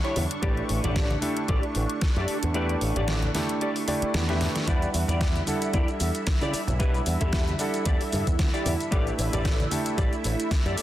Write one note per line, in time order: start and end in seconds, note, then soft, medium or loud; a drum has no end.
0.00 0.40 G3 medium
0.00 0.40 D4 medium
0.00 4.69 D4 medium
0.00 0.40 E4 medium
0.00 0.23 E4 medium
0.00 0.40 A4 medium
0.00 0.40 F#5 medium
0.00 4.69 C#6 medium
0.04 0.23 G4 medium
0.04 0.24 C#5 medium
0.04 closed hi-hat soft
0.16 0.25 E2 medium
0.16 open hi-hat medium
0.16 high conga medium
0.16 low conga medium
0.31 closed hi-hat soft
0.42 0.60 A1 medium
0.42 1.19 A3 medium
0.42 1.19 D4 medium
0.42 1.20 E4 medium
0.42 0.63 G4 loud
0.42 1.20 G4 medium
0.42 0.63 A4 medium
0.42 1.20 B4 medium
0.42 0.64 D5 loud
0.42 kick loud
0.42 closed hi-hat soft
0.57 closed hi-hat soft
0.69 0.79 A1 medium
0.69 open hi-hat medium
0.84 1.15 A1 medium
0.84 1.17 G4 medium
0.84 1.17 A4 medium
0.84 1.17 D5 medium
0.84 closed hi-hat medium
0.84 low conga medium
0.96 kick loud
0.96 snare loud
0.96 closed hi-hat medium
1.10 closed hi-hat soft
1.10 high conga medium
1.21 2.52 A3 medium
1.21 2.52 D4 medium
1.21 2.52 E4 medium
1.21 2.53 G4 medium
1.21 2.53 A4 medium
1.21 open hi-hat loud
1.21 high conga medium
1.37 closed hi-hat soft
1.48 1.58 A1 medium
1.48 1.64 G4 medium
1.48 1.64 A4 medium
1.48 1.64 D5 medium
1.48 kick loud
1.48 closed hi-hat medium
1.63 closed hi-hat soft
1.75 1.85 A1 medium
1.75 muted clean electric guitar stroke soft
1.75 open hi-hat medium
1.90 closed hi-hat soft
2.01 kick loud
2.01 snare loud
2.01 closed hi-hat soft
2.16 2.28 F#2 medium
2.16 2.36 G4 medium
2.16 2.36 A4 medium
2.16 2.36 D5 medium
2.16 closed hi-hat soft
2.28 muted picked electric bass stroke soft
2.28 open hi-hat medium
2.43 2.74 E2 medium
2.43 closed hi-hat medium
2.43 low conga medium
2.54 3.32 A3 medium
2.54 3.32 D4 medium
2.54 3.32 E4 medium
2.54 2.75 G4 loud
2.54 3.32 G4 medium
2.54 2.76 A4 medium
2.54 3.32 B4 medium
2.54 2.76 D5 loud
2.54 closed hi-hat medium
2.69 closed hi-hat soft
2.81 2.91 A1 medium
2.81 open hi-hat loud
2.96 3.27 A1 medium
2.96 3.29 G4 medium
2.96 3.29 A4 medium
2.96 3.29 D5 medium
2.96 closed hi-hat medium
2.96 low conga medium
3.08 snare loud
3.08 closed hi-hat medium
3.22 closed hi-hat soft
3.22 high conga medium
3.35 3.86 A3 medium
3.35 3.86 D4 medium
3.35 3.86 E4 medium
3.35 3.86 G4 medium
3.35 3.86 A4 medium
3.35 snare medium
3.35 open hi-hat loud
3.35 high conga medium
3.49 closed hi-hat medium
3.61 3.76 G4 medium
3.61 3.76 A4 medium
3.61 3.76 D5 medium
3.61 closed hi-hat medium
3.76 open hi-hat medium
3.88 4.25 A3 medium
3.88 4.26 D4 medium
3.88 4.26 E4 medium
3.88 4.26 G4 medium
3.88 4.26 D5 medium
3.88 muted clean electric guitar stroke soft
3.88 open hi-hat medium
3.88 high conga medium
4.02 muted picked electric bass stroke soft
4.02 closed hi-hat soft
4.14 4.47 E2 medium
4.14 snare loud
4.14 closed hi-hat medium
4.29 4.65 A3 medium
4.29 4.65 D4 medium
4.29 4.65 E4 medium
4.29 4.48 G4 medium
4.29 4.65 G4 medium
4.29 4.48 A4 medium
4.29 4.65 B4 medium
4.29 4.49 E5 medium
4.29 snare soft
4.29 closed hi-hat soft
4.41 snare medium
4.41 open hi-hat medium
4.41 high conga soft
4.41 low conga medium
4.56 snare medium
4.56 closed hi-hat medium
4.67 4.85 E2 medium
4.67 5.44 G3 medium
4.67 5.44 D4 medium
4.67 4.88 E4 loud
4.67 5.45 E4 medium
4.67 10.82 E4 medium
4.67 4.88 G4 medium
4.67 5.45 B4 medium
4.67 4.88 D5 loud
4.67 10.82 E5 medium
4.67 5.45 F#5 medium
4.67 kick loud
4.67 closed hi-hat medium
4.67 shaker soft
4.82 closed hi-hat soft
4.82 shaker soft
4.94 5.03 E2 medium
4.94 open hi-hat loud
4.94 shaker medium
5.08 5.40 E2 medium
5.08 5.41 E4 medium
5.08 5.41 G4 medium
5.08 5.41 D5 medium
5.08 closed hi-hat medium
5.08 low conga medium
5.08 shaker soft
5.21 kick loud
5.21 snare loud
5.21 closed hi-hat medium
5.21 shaker soft
5.35 closed hi-hat soft
5.35 high conga medium
5.35 shaker soft
5.46 6.77 G3 medium
5.46 6.77 D4 medium
5.46 6.77 E4 medium
5.46 6.78 A4 medium
5.46 6.78 F#5 medium
5.46 open hi-hat loud
5.46 high conga medium
5.46 shaker medium
5.62 closed hi-hat soft
5.62 shaker soft
5.73 5.83 E2 medium
5.73 5.88 E4 medium
5.73 5.89 G4 medium
5.73 5.89 D5 medium
5.73 kick loud
5.73 closed hi-hat medium
5.73 shaker soft
5.88 closed hi-hat soft
5.88 shaker soft
6.00 6.10 E2 medium
6.00 muted clean electric guitar stroke soft
6.00 open hi-hat loud
6.00 shaker medium
6.15 closed hi-hat medium
6.15 shaker soft
6.27 kick loud
6.27 snare loud
6.27 closed hi-hat medium
6.27 shaker soft
6.41 6.53 C#3 medium
6.41 6.61 E4 medium
6.41 6.61 G4 medium
6.41 6.61 D5 medium
6.41 closed hi-hat soft
6.41 shaker soft
6.53 muted picked electric bass stroke soft
6.53 open hi-hat loud
6.53 shaker medium
6.67 6.99 B1 medium
6.67 closed hi-hat medium
6.67 low conga medium
6.67 shaker soft
6.79 7.56 G3 medium
6.79 7.57 D4 medium
6.79 7.00 E4 medium
6.79 7.57 E4 medium
6.79 7.00 G4 loud
6.79 7.01 B4 loud
6.79 7.57 B4 medium
6.79 7.57 F#5 medium
6.79 kick loud
6.79 closed hi-hat soft
6.79 shaker soft
6.95 closed hi-hat soft
6.95 shaker soft
7.06 7.16 E2 medium
7.06 open hi-hat loud
7.06 shaker medium
7.20 7.52 E2 medium
7.20 7.53 E4 medium
7.20 7.53 G4 medium
7.20 7.54 A4 loud
7.20 kick medium
7.20 closed hi-hat medium
7.20 low conga medium
7.20 shaker soft
7.33 kick loud
7.33 snare loud
7.33 closed hi-hat soft
7.33 shaker soft
7.48 closed hi-hat soft
7.48 high conga medium
7.48 shaker soft
7.58 8.89 G3 medium
7.58 8.89 D4 medium
7.58 8.89 E4 medium
7.58 8.90 A4 medium
7.58 8.90 F#5 medium
7.58 open hi-hat loud
7.58 shaker medium
7.74 closed hi-hat medium
7.74 shaker soft
7.85 7.95 E2 medium
7.85 8.00 E4 medium
7.85 8.01 G4 medium
7.85 8.01 D5 loud
7.85 kick loud
7.85 closed hi-hat medium
7.85 shaker soft
8.01 muted picked electric bass stroke soft
8.01 open hi-hat medium
8.01 shaker soft
8.12 8.22 G2 medium
8.12 muted clean electric guitar stroke soft
8.12 open hi-hat loud
8.12 high conga medium
8.12 shaker medium
8.27 8.35 E2 medium
8.27 kick medium
8.27 closed hi-hat soft
8.27 shaker soft
8.39 8.48 D2 medium
8.39 kick loud
8.39 snare loud
8.39 closed hi-hat medium
8.39 shaker soft
8.53 8.73 E4 medium
8.53 8.73 G4 medium
8.53 8.73 D5 medium
8.53 closed hi-hat soft
8.53 shaker soft
8.66 8.75 E2 loud
8.66 open hi-hat loud
8.66 high conga medium
8.66 low conga medium
8.66 shaker medium
8.80 closed hi-hat medium
8.80 shaker soft
8.91 9.10 A1 medium
8.91 9.68 A3 medium
8.91 9.69 D4 medium
8.91 9.69 E4 medium
8.91 9.13 G4 loud
8.91 9.69 G4 medium
8.91 9.13 A4 medium
8.91 9.69 B4 medium
8.91 9.13 D5 loud
8.91 kick loud
8.91 closed hi-hat soft
8.91 shaker soft
9.07 closed hi-hat soft
9.07 shaker soft
9.19 9.28 A1 medium
9.19 open hi-hat loud
9.19 shaker medium
9.33 9.64 A1 medium
9.33 9.66 G4 medium
9.33 9.66 A4 medium
9.33 9.66 D5 loud
9.33 closed hi-hat medium
9.33 low conga medium
9.33 shaker soft
9.45 kick loud
9.45 snare loud
9.45 closed hi-hat soft
9.45 shaker soft
9.60 closed hi-hat soft
9.60 high conga medium
9.60 shaker soft
9.71 10.82 A3 medium
9.71 10.82 D4 medium
9.71 10.82 E4 medium
9.71 10.82 G4 medium
9.71 10.82 A4 medium
9.71 open hi-hat loud
9.71 high conga medium
9.71 shaker medium
9.86 closed hi-hat soft
9.86 shaker soft
9.97 10.07 A1 medium
9.97 10.13 G4 medium
9.97 10.13 A4 medium
9.97 10.13 D5 medium
9.97 kick loud
9.97 closed hi-hat medium
9.97 shaker soft
10.13 closed hi-hat soft
10.13 shaker soft
10.24 10.34 A1 medium
10.24 muted clean electric guitar stroke soft
10.24 open hi-hat loud
10.24 shaker medium
10.40 closed hi-hat soft
10.40 shaker soft
10.51 kick loud
10.51 snare loud
10.51 closed hi-hat medium
10.51 shaker soft
10.66 10.77 F#2 medium
10.66 10.82 G4 medium
10.66 10.82 A4 medium
10.66 10.82 D5 loud
10.66 closed hi-hat soft
10.66 shaker soft
10.77 muted picked electric bass stroke soft
10.77 open hi-hat loud
10.77 shaker medium